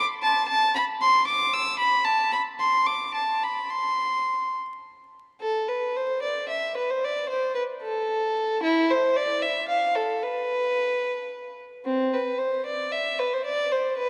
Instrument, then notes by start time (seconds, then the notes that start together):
violin
0.23 A5
0.48 A5
0.75 B5
1.01 C6
1.27 D6
1.54 E6
1.79 B5
2.05 A5
2.33 B5
2.60 C6
2.87 D6
3.14 A5
3.43 B5
3.70 C6
5.41 A4
5.69 B4
5.96 C5
6.22 D5
6.49 E5
6.77 B4
6.90 C5
7.04 D5
7.29 C5
7.55 B4
7.82 A4
8.63 E4
8.90 C5
9.17 D5
9.42 E5
9.68 F5
9.95 A4
10.23 B4
11.85 C4
12.13 B4
12.39 C5
12.66 D5
12.92 E5
13.19 B4
13.33 C5
13.45 D5
13.72 C5
13.97 B4